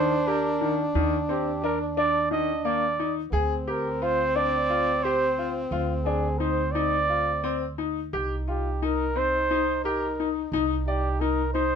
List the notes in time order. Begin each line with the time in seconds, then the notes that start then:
Already playing: D#2 D#3 D4 C5
0.27 G4 A#4
0.61 D#3
0.95 D#2 D#3
1.29 C4 G4
1.64 D4 A#4
1.97 D4 D5
2.31 D#3 D#5
2.65 A#3 D5
2.99 D#4
3.31 D2 C4 G#4
3.67 G4 A#4
4.02 F4 C5
4.36 D4 D5
4.70 F4
5.04 G4 C5
5.38 F4
5.71 D2 F4
6.05 D4 G#4
6.39 D#4 C5
6.72 D#4 D5
7.09 F4
7.44 C4
7.78 D#4
8.13 C2 D#4 G4
8.48 F4 G4
8.82 D#4 A#4
9.16 C4 C5
9.51 D#4
9.84 G4 A#4
10.20 D#4
10.52 C2 D#4
10.87 G4 D5
11.21 D#4 A#4
11.54 D#4 C5